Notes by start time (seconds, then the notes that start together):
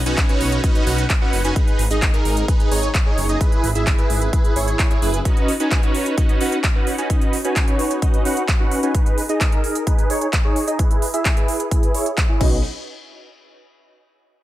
Already playing: downlifter
0.06 B1 C#4 D#4 F#4 B4 G#5, closed hi-hat
0.18 kick, clap, closed hi-hat
0.29 C#4 D#4 F#4 B4 C#5, closed hi-hat
0.41 B1, open hi-hat
0.52 closed hi-hat
0.64 C#4 D#4 F#4 B4 D#5, kick, closed hi-hat
0.75 closed hi-hat
0.87 B1 C#4 D#4 F#4 B4 F#5, open hi-hat
0.98 closed hi-hat
1.10 kick, clap, closed hi-hat
1.21 C#4 D#4 F#4 B4 F#5
1.33 F#1, open hi-hat
1.45 C#4 D#4 F#4 B4 G#5, closed hi-hat
1.56 kick, closed hi-hat
1.68 closed hi-hat
1.79 G#1, open hi-hat
1.91 G#1 D#4 G#4 D#5, closed hi-hat
2.02 kick, clap, closed hi-hat
2.14 D#4 G#4 A#4, closed hi-hat
2.25 G#1, open hi-hat
2.37 closed hi-hat
2.48 D#4 G#4 B4, kick, closed hi-hat
2.60 closed hi-hat
2.71 G#1 D#4 G#4 C#5, open hi-hat
2.83 closed hi-hat
2.95 kick, clap, closed hi-hat
3.06 D#4 G#4 C#5
3.18 F#1, open hi-hat
3.29 D#4 G#4 D#5, closed hi-hat
3.41 E4 G#4 B4, kick, closed hi-hat
3.52 closed hi-hat
3.64 G#1, open hi-hat
3.75 G#1 E4 G#4 E5, closed hi-hat
3.87 kick, clap, closed hi-hat
3.98 E4 G#4 B4, closed hi-hat
4.10 G#1, open hi-hat
4.21 closed hi-hat
4.33 E4 G#4 B4, kick, closed hi-hat
4.45 closed hi-hat
4.56 G#1 E4 G#4 C#5, open hi-hat
4.68 closed hi-hat
4.79 kick, clap, closed hi-hat
4.91 E4 G#4 C#5, closed hi-hat
5.02 F#1 E4 G#4 B4, open hi-hat
5.14 closed hi-hat
5.25 C#4 D#4 F#4 B4 D#5, kick, closed hi-hat
5.37 closed hi-hat
5.48 open hi-hat
5.60 C#4 D#4 F#4 B4 G#5, closed hi-hat
5.71 kick, clap, closed hi-hat
5.83 C#4 D#4 F#4 B4 C#5, closed hi-hat
5.95 open hi-hat
6.06 closed hi-hat
6.18 C#4 D#4 F#4 B4 D#5, kick, closed hi-hat
6.29 closed hi-hat
6.41 C#4 D#4 F#4 B4 F#5, open hi-hat
6.52 closed hi-hat
6.64 kick, clap, closed hi-hat
6.75 C#4 D#4 F#4 B4 F#5
6.87 open hi-hat
6.98 C#4 D#4 F#4 B4 G#5, closed hi-hat
7.10 C#4 D#4 F#4 B4 D#5, kick, closed hi-hat
7.21 closed hi-hat
7.33 open hi-hat
7.45 C#4 D#4 F#4 B4 G#5, closed hi-hat
7.56 kick, clap, closed hi-hat
7.68 C#4 D#4 F#4 B4 C#5, closed hi-hat
7.79 open hi-hat
7.91 closed hi-hat
8.02 C#4 D#4 F#4 B4 D#5, kick, closed hi-hat
8.14 closed hi-hat
8.25 C#4 D#4 F#4 B4 F#5, open hi-hat
8.37 closed hi-hat
8.48 kick, clap, closed hi-hat
8.60 C#4 D#4 F#4 B4 F#5
8.71 open hi-hat
8.83 C#4 D#4 F#4 B4 G#5, closed hi-hat
8.95 kick, closed hi-hat
9.06 closed hi-hat
9.18 open hi-hat
9.29 D#4 G#4 D#5, closed hi-hat
9.41 kick, clap, closed hi-hat
9.52 D#4 G#4 A#4, closed hi-hat
9.64 open hi-hat
9.75 closed hi-hat
9.87 D#4 G#4 B4, kick, closed hi-hat
9.98 closed hi-hat
10.10 D#4 G#4 C#5, open hi-hat
10.21 closed hi-hat
10.33 kick, clap, closed hi-hat
10.45 D#4 G#4 C#5
10.56 open hi-hat
10.68 D#4 G#4 D#5, closed hi-hat
10.79 E4 G#4 B4, kick, closed hi-hat
10.91 closed hi-hat
11.02 open hi-hat
11.14 E4 G#4 E5, closed hi-hat
11.25 kick, clap, closed hi-hat
11.37 E4 G#4 B4, closed hi-hat
11.48 open hi-hat
11.60 closed hi-hat
11.71 E4 G#4 B4, kick, closed hi-hat
11.83 closed hi-hat
11.94 E4 G#4 C#5, open hi-hat
12.06 closed hi-hat
12.18 kick, clap, closed hi-hat
12.29 E4 G#4 C#5
12.41 B1 C#4 D#4 F#4 B4 D#5, kick, crash